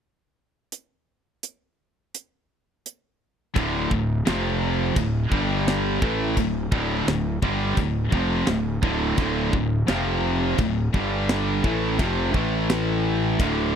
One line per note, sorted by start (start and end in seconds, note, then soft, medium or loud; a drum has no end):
0.72 closed hi-hat medium
1.43 closed hi-hat medium
2.15 closed hi-hat medium
2.86 closed hi-hat medium
3.54 3.88 D1 medium
3.54 3.89 D2 medium
3.54 3.90 A2 loud
3.54 3.90 D3 medium
3.54 kick loud
3.54 china medium
3.91 4.24 D1 medium
3.91 4.19 D2 medium
3.91 4.19 A2 medium
3.91 kick medium
4.26 4.93 F1 medium
4.26 4.95 F2 medium
4.26 4.96 C3 loud
4.26 4.96 F3 medium
4.26 snare loud
4.26 china medium
4.96 5.29 D1 medium
4.96 5.24 D2 medium
4.96 5.24 A2 medium
4.96 kick loud
4.96 china medium
5.31 5.98 G1 medium
5.31 6.01 G2 medium
5.31 6.01 D3 medium
5.31 6.01 G3 medium
5.31 kick loud
5.68 snare loud
5.68 china medium
6.02 6.35 A1 loud
6.02 6.36 A2 medium
6.02 6.37 E3 medium
6.02 6.37 A3 medium
6.02 kick loud
6.37 6.70 D1 medium
6.37 6.65 D2 medium
6.37 6.66 A2 medium
6.37 kick medium
6.37 china medium
6.72 7.05 D1 loud
6.72 7.06 D2 medium
6.72 7.07 A2 loud
6.72 7.07 D3 loud
6.72 kick loud
7.07 7.40 D1 medium
7.07 7.36 D2 medium
7.07 7.36 A2 medium
7.07 snare loud
7.07 china medium
7.42 7.75 G1 loud
7.42 7.77 G2 medium
7.42 7.77 D3 loud
7.42 7.77 G3 medium
7.42 kick loud
7.77 8.10 D1 medium
7.77 8.06 D2 medium
7.77 8.06 A2 medium
7.77 kick loud
7.77 china medium
8.12 8.45 F1 loud
8.12 8.47 F2 medium
8.12 8.47 C3 loud
8.12 8.47 F3 loud
8.12 kick loud
8.47 8.80 D1 medium
8.47 8.76 D2 medium
8.47 8.76 A2 medium
8.47 snare loud
8.47 china medium
8.83 9.15 D1 loud
8.83 9.17 D2 medium
8.83 9.17 A2 loud
8.83 9.18 D3 loud
8.83 kick loud
9.17 9.50 D1 medium
9.17 9.51 D2 medium
9.17 9.52 A2 loud
9.17 9.53 D3 loud
9.17 kick loud
9.17 china medium
9.52 9.86 D1 medium
9.52 9.81 D2 medium
9.52 9.81 A2 medium
9.52 kick medium
9.87 10.54 F1 medium
9.87 10.57 F2 loud
9.87 10.57 C3 medium
9.87 10.58 F3 medium
9.87 snare loud
9.87 china medium
10.58 10.91 D1 medium
10.58 10.86 D2 medium
10.58 10.87 A2 medium
10.58 kick medium
10.58 china medium
10.93 11.60 G1 medium
10.93 11.62 G2 medium
10.93 11.63 D3 medium
10.93 11.63 G3 loud
10.93 kick loud
11.29 snare loud
11.29 china medium
11.62 11.97 A1 loud
11.62 11.97 A2 medium
11.62 11.98 E3 loud
11.62 11.98 A3 loud
11.62 kick loud
11.98 12.32 F1 medium
11.98 12.32 F2 medium
11.98 12.33 C3 loud
11.98 12.33 F3 loud
11.98 kick loud
11.98 china medium
12.33 13.35 A1 medium
12.33 13.38 A2 medium
12.33 13.38 E3 loud
12.33 13.38 A3 loud
12.33 kick loud
12.70 snare loud
12.70 china medium
13.38 13.76 D1 loud
13.38 13.76 D2 loud
13.38 13.76 A2 medium
13.38 13.76 D3 loud
13.38 kick loud
13.38 china medium